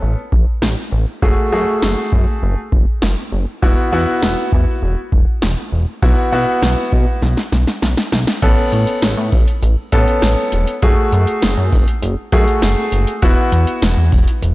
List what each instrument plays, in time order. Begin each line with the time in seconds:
Already playing: grand piano B3 C#4 A4
0.02 analog synth bass A1
0.32 analog synth bass A1, kick
0.62 analog synth bass A1, snare
0.92 analog synth bass A1
1.22 analog synth bass F#1, grand piano A3 F#4 G#4, kick
1.52 analog synth bass F#2, grand piano A3 F#4 G#4
1.82 analog synth bass F#1, snare
2.12 analog synth bass F#2, kick
2.42 analog synth bass F#1
2.72 analog synth bass F#1, kick
3.02 analog synth bass F#1, snare
3.32 analog synth bass F#1
3.62 analog synth bass E1, grand piano B3 E4 F#4, kick
3.92 analog synth bass E2, grand piano B3 E4 F#4
4.22 analog synth bass E1, snare
4.52 analog synth bass E2, kick
4.82 analog synth bass E1
5.12 analog synth bass E1, kick
5.42 analog synth bass E1, snare
5.72 analog synth bass E1
6.02 analog synth bass B1, grand piano B3 E4 F#4, kick
6.32 analog synth bass B2, grand piano B3 E4 F#4
6.62 analog synth bass B1, snare
6.92 analog synth bass B2, kick
7.22 analog synth bass B1, snare
7.37 snare
7.52 analog synth bass B1, snare
7.67 snare
7.82 analog synth bass B1, snare
7.97 snare
8.12 analog synth bass B1, snare
8.27 snare
8.42 analog synth bass A1, grand piano B3 C#4 A4, kick, closed hi-hat, crash
8.72 analog synth bass A2, closed hi-hat
8.87 closed hi-hat
9.02 analog synth bass A1, snare, closed hi-hat
9.17 analog synth bass A2
9.32 analog synth bass A1, kick, open hi-hat
9.48 closed hi-hat
9.62 analog synth bass A1, closed hi-hat
9.92 analog synth bass A2, grand piano B3 C#4 A4, kick, closed hi-hat
10.08 closed hi-hat
10.22 analog synth bass A1, snare, closed hi-hat
10.52 analog synth bass E1, closed hi-hat
10.67 closed hi-hat
10.82 analog synth bass F#1, grand piano A3 F#4 G#4, kick, closed hi-hat
11.12 analog synth bass F#2, closed hi-hat
11.27 closed hi-hat
11.42 analog synth bass F#1, snare, closed hi-hat
11.57 analog synth bass F#2
11.72 analog synth bass F#1, kick, open hi-hat
11.88 closed hi-hat
12.02 analog synth bass F#1, closed hi-hat
12.32 analog synth bass F#2, grand piano A3 F#4 G#4, kick, closed hi-hat
12.48 closed hi-hat
12.62 analog synth bass F#1, snare, closed hi-hat
12.92 analog synth bass F#1, closed hi-hat
13.07 closed hi-hat
13.22 analog synth bass E1, grand piano B3 E4 F#4, kick, closed hi-hat
13.52 analog synth bass E2, closed hi-hat
13.67 closed hi-hat
13.82 analog synth bass E1, snare, closed hi-hat
13.97 analog synth bass E2
14.12 analog synth bass E1, kick, open hi-hat
14.28 closed hi-hat
14.42 analog synth bass E1, closed hi-hat